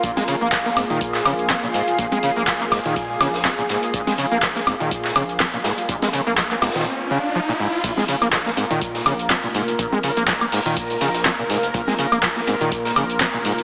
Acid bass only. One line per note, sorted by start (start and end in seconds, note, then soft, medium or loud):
0.04 0.11 A#2 medium
0.17 0.23 G#3 medium
0.28 0.35 C#3 loud
0.41 0.47 A#3 medium
0.52 0.57 F3 loud
0.66 0.69 A#3 medium
0.77 0.84 G#2 medium
0.90 0.99 D#3 loud
1.25 1.33 C#3 loud
1.50 1.54 F3 loud
1.63 1.67 A#2 medium
1.74 1.82 G#2 medium
1.98 2.06 A#2 medium
2.12 2.18 G#3 medium
2.23 2.30 C#3 loud
2.36 2.42 A#3 medium
2.47 2.52 F3 loud
2.61 2.64 A#3 medium
2.72 2.79 G#2 medium
2.85 2.94 D#3 loud
3.20 3.28 C#3 loud
3.45 3.49 F3 loud
3.58 3.62 A#2 loud
3.69 3.77 G#2 medium
3.94 4.01 A#2 medium
4.07 4.13 G#3 medium
4.18 4.25 C#3 loud
4.32 4.38 A#3 medium
4.42 4.47 F3 loud
4.56 4.60 A#3 medium
4.67 4.74 G#2 medium
4.80 4.89 D#3 loud
5.16 5.23 C#3 loud
5.40 5.45 F3 loud
5.54 5.57 A#2 loud
5.64 5.72 G#2 medium
5.89 5.96 A#2 medium
6.02 6.08 G#3 medium
6.13 6.21 C#3 loud
6.27 6.33 A#3 medium
6.38 6.42 F3 loud
6.51 6.55 A#3 medium
6.62 6.69 G#2 medium
6.76 6.85 D#3 loud
7.11 7.18 C#3 loud
7.35 7.40 F3 loud
7.49 7.52 A#2 loud
7.60 7.67 G#2 medium
7.84 7.91 A#2 medium
7.97 8.03 G#3 medium
8.08 8.16 C#3 loud
8.22 8.28 A#3 medium
8.33 8.37 F3 loud
8.46 8.50 A#3 medium
8.57 8.65 G#2 medium
8.71 8.80 D#3 loud
9.06 9.13 C#3 loud
9.30 9.35 F3 loud
9.44 9.47 A#2 medium
9.55 9.62 G#2 medium
9.79 9.86 A#2 medium
9.93 9.99 G#3 medium
10.03 10.11 C#3 loud
10.17 10.23 A#3 medium
10.28 10.32 F3 loud
10.41 10.45 A#3 medium
10.52 10.60 G#2 medium
10.66 10.75 D#3 loud
11.01 11.08 C#3 loud
11.25 11.30 F3 loud
11.39 11.42 A#2 loud
11.50 11.57 G#2 medium
11.74 11.82 A#2 medium
11.88 11.94 G#3 medium
11.99 12.06 C#3 loud
12.12 12.18 A#3 medium
12.23 12.27 F3 loud
12.37 12.40 A#3 medium
12.47 12.55 G#2 medium
12.61 12.70 D#3 loud
12.96 13.04 C#3 loud
13.21 13.25 F3 loud
13.34 13.38 A#2 loud
13.45 13.52 G#2 medium